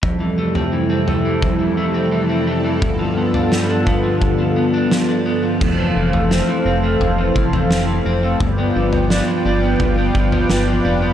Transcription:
<<
  \new Staff \with { instrumentName = "Analog synth pad" } { \time 4/4 \key f \lydian \tempo 4 = 86 << { a'1~ | a'1 | f''1 | g''1 | } \\ { <f, c g e'>1 | <g, d b f'>1 | <e a' c''>1 | <f' b' d''>1 | } >> }
  \new Staff \with { instrumentName = "Clean electric guitar" } { \time 4/4 \key f \lydian f,16 e16 a16 c'16 e16 c'16 a16 e16 f,16 e16 a16 c'16 e16 c'16 a16 e16 | g,16 f16 b16 d'16 f16 d'16 b16 f16 g,16 f16 b16 d'16 f16 d'16 b16 f16 | f,16 a16 e16 a16 c'16 e16 c'16 a16 f,16 a16 e16 a16 c'16 e16 c'16 a16 | g,16 b16 f16 b16 d'16 f16 d'16 b16 g,16 b16 f16 b16 d'16 f16 d'16 b16 | }
  \new Staff \with { instrumentName = "Analog synth bass" } { \clef bass \time 4/4 \key f \lydian r1 | r1 | f,,8 f,,8. r16 f,,8 f,,8 f,,8 f,,8 f,,8 | g,,8 g,,8. r16 g,,8 g,,8 g,,8 g,,8 f,,8 | }
  \new DrumStaff \with { instrumentName = "Drums" } \drummode { \time 4/4 <bd tomfh>8. tomfh16 r8 tomfh8 <bd tomfh>4 r4 | <bd tomfh>8. tomfh16 sn8 <bd tomfh>8 <bd tomfh>4 sn4 | <cymc bd tomfh>8. tomfh16 sn4 tomfh8 bd16 tomfh16 sn4 | <bd tomfh>8. tomfh16 sn4 <bd tomfh>8 bd16 tomfh16 sn4 | }
>>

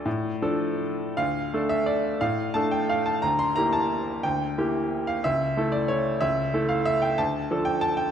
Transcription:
\new Staff \with { instrumentName = "Grand piano" } { \time 3/4 \key d \minor \tempo 4 = 180 << { d''2 r4 | f''4. e''8 d''4 | f''4 a''8 g''8 f''8 a''8 | bes''8 c'''8 bes''8 a''4. |
g''2~ g''8 f''8 | e''4. d''8 cis''4 | e''4. f''8 e''8 g''8 | a''4. g''8 a''8 g''8 | } \\ { a,4 <f d' a'>2 | d,4 <a d' a'>2 | a,4 <a d' a'>2 | d,4 <bes e' g'>2 |
d,4 <bes e' g'>2 | cis,4 <a e' a'>2 | cis,4 <a e' a'>2 | d,4 <f d' a'>2 | } >> }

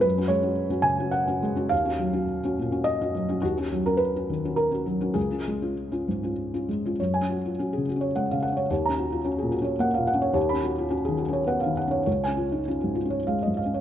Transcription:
\new Staff \with { instrumentName = "Felt piano" } { \time 3/4 \key fis \major \tempo 4 = 105 << { b'8 cis''4 gis''8 fis''4 | eis''2 dis''4 | fis'8. ais'16 b'4 ais'4 | gis'2~ gis'8 r8 |
cis''16 gis''16 fis'16 eis'16 fis'16 gis'16 fis'16 cis''16 fis''16 eis''16 fis''16 cis''16 | cis''16 ais''16 fis'16 eis'16 fis'16 gis'16 fis'16 cis''16 fis''16 eis''16 fis''16 cis''16 | cis''16 b''16 fis'16 eis'16 fis'16 gis'16 fis'16 cis''16 fis''16 eis''16 fis''16 cis''16 | cis''16 gis''16 eis'16 dis'16 eis'16 fis'16 eis'16 cis''16 eis''16 dis''16 eis''16 cis''16 | } \\ { fis,16 <cis' fis'>16 gis16 <cis' fis'>8 <cis' fis'>16 cis16 <cis' fis'>8 <cis' fis'>16 gis16 <cis' fis'>16 | dis,16 <cis' fis'>16 fis16 <cis' fis'>8 <cis' fis'>16 ais,16 <cis' fis'>8 <cis' fis'>16 fis16 <cis' fis'>16 | dis,16 <cis' fis'>16 fis16 <cis' fis'>8 <cis' fis'>16 dis16 <cis' fis'>8 <cis' fis'>16 fis16 <cis' fis'>16 | cis,16 <cis' eis'>16 gis16 <cis' eis'>8 <cis' eis'>16 gis,16 <cis' eis'>8 <cis' eis'>16 gis16 <cis' eis'>16 |
\tuplet 3/2 { fis,8 cis'4 cis'8 cis8 cis'8 gis8 cis8 cis'8 } | \tuplet 3/2 { dis,8 cis'4 cis'8 ais,8 cis'8 ais8 ais,8 cis'8 } | \tuplet 3/2 { dis,8 cis'4 cis'8 dis8 cis'8 b8 dis8 cis'8 } | \tuplet 3/2 { cis,8 cis'4 cis'8 gis,8 cis'8 gis8 gis,8 cis'8 } | } >> }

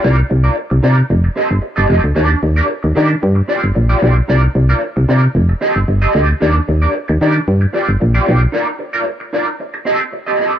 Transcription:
<<
  \new Staff \with { instrumentName = "Clean electric guitar" } { \time 4/4 \key c \dorian \tempo 4 = 113 <ees' f' bes' d''>16 r8 <ees' f' bes' d''>16 r8 <ees' f' bes' d''>16 r8. <c' g' a' ees''>16 r8 <c' g' a' ees''>16 <c' g' a' ees''>16 r16 | <d' g' bes' d''>8 r16 <d' g' bes' d''>16 r8 <d' g' bes' d''>16 r8. <c' f' g' d''>16 r8 <c' f' g' d''>16 <c' f' g' d''>16 r16 | <ees' f' bes' d''>16 r8 <ees' f' bes' d''>16 r8 <ees' f' bes' d''>16 r8. <c' g' a' ees''>16 r8 <c' g' a' ees''>16 <c' g' a' ees''>16 r16 | <d' g' bes' d''>16 r8 <d' g' bes' d''>16 r8 <d' g' bes' d''>16 r8. <c' f' g' d''>16 r8 <c' f' g' d''>16 <c' f' g' d''>16 r16 |
<ees' f' bes' d''>16 r8 <ees' f' bes' d''>16 r8 <ees' f' bes' d''>16 r8. <c' g' a' ees''>16 r8 <c' g' a' ees''>16 <c' g' a' ees''>16 r16 | }
  \new Staff \with { instrumentName = "FM bass" } { \clef bass \time 4/4 \key c \dorian c,8 c,8 r16 c,16 c8 f,,8 r16 g,,16 r16 g,,16 f,,16 d,16 | ees,8 ees,8 r16 ees,16 ees8 g,8 r16 g,,16 bes,,8 b,,8 | c,8 c,8 r16 c,16 c8 f,,8 r16 g,,16 g,,8 d,8 | ees,8 ees,8 r16 ees,16 ees8 g,8 r16 g,,16 bes,,8 b,,8 |
r1 | }
>>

